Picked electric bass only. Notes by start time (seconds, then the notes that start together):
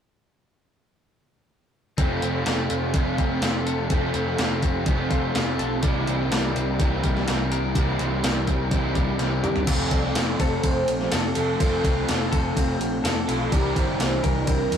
1.98 F1
2.22 F1
2.46 F1
2.70 F1
3.42 F1
3.91 F1
4.14 F1
4.38 F1
4.63 F1
4.87 F1
5.35 F1
5.59 B1
5.83 C2
6.07 C2
6.32 C2
6.55 C2
6.80 C2
7.29 C2
7.75 C2
7.99 C2
8.23 C2
8.47 C2
8.72 C2
9.19 C2
9.43 G2
9.68 F1
9.91 C2
10.14 F1
10.40 F1
10.64 F1
10.88 A#1
11.12 F1
11.35 F1
11.61 F1
11.84 C2
12.09 F1
12.32 F1
12.57 F1
12.80 A#1
13.04 F1
13.28 B1
13.52 C2
13.76 G1
14.00 C2
14.24 C2
14.47 C2
14.72 F2